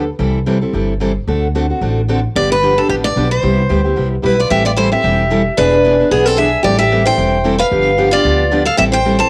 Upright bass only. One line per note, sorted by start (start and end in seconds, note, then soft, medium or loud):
0.19 0.63 C2 medium
0.73 1.17 G1 medium
1.27 1.71 D2 medium
1.81 2.25 A1 medium
2.36 2.79 G1 medium
2.89 3.12 A1 medium
3.16 3.39 B1 medium
3.43 3.65 C2 medium
3.70 3.93 D2 medium
3.97 4.20 C2 medium
4.24 4.47 B1 medium
4.50 4.93 A1 medium
5.04 5.47 E1 medium
5.58 6.01 E1 medium
6.11 6.54 B1 medium
6.64 7.07 A1 medium
7.18 7.61 E1 medium
7.71 8.14 G1 medium
8.24 8.67 D2 medium
8.78 9.21 A1 medium